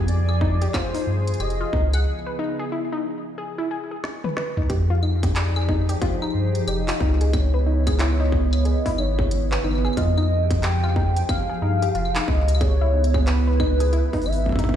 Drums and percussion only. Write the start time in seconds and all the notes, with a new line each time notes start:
0.08 closed hi-hat
0.29 claves
0.41 kick
0.62 closed hi-hat
0.74 kick, clap, closed hi-hat, claves
0.95 open hi-hat
1.28 closed hi-hat
1.34 closed hi-hat
1.40 closed hi-hat, claves
1.50 closed hi-hat
1.73 kick
1.93 closed hi-hat, claves
4.04 snare
4.24 high tom
4.37 snare
4.57 mid tom
4.70 kick, closed hi-hat
5.03 claves
5.23 kick, closed hi-hat
5.36 clap, closed hi-hat
5.56 claves
5.69 kick
5.89 closed hi-hat
6.02 kick, closed hi-hat
6.22 claves
6.24 claves
6.30 claves
6.55 closed hi-hat
6.68 closed hi-hat, claves
6.88 clap, open hi-hat
7.00 kick
7.21 closed hi-hat
7.33 kick, closed hi-hat, claves
7.87 kick, closed hi-hat, claves
7.99 clap, closed hi-hat
8.32 kick
8.53 closed hi-hat, claves
8.65 closed hi-hat
8.86 kick, open hi-hat
8.98 claves
9.19 kick
9.31 closed hi-hat
9.52 clap
9.64 claves
9.71 claves
9.75 claves
9.85 claves
9.86 claves
9.93 claves
9.97 kick, closed hi-hat
10.18 claves
10.51 kick, closed hi-hat
10.63 clap, closed hi-hat
10.84 claves
10.96 kick
11.17 closed hi-hat
11.29 kick, closed hi-hat, claves
11.82 closed hi-hat
11.95 closed hi-hat
12.05 claves
12.15 clap, open hi-hat
12.28 kick
12.48 closed hi-hat
12.55 claves
12.61 kick, closed hi-hat
13.04 closed hi-hat
13.14 kick, claves
13.27 clap, closed hi-hat
13.60 kick, claves
13.80 closed hi-hat
13.93 closed hi-hat
14.13 kick, open hi-hat
14.22 open hi-hat
14.26 claves
14.33 open hi-hat
14.46 kick
14.49 kick
14.52 kick
14.56 kick
14.59 kick, closed hi-hat
14.64 kick
14.69 kick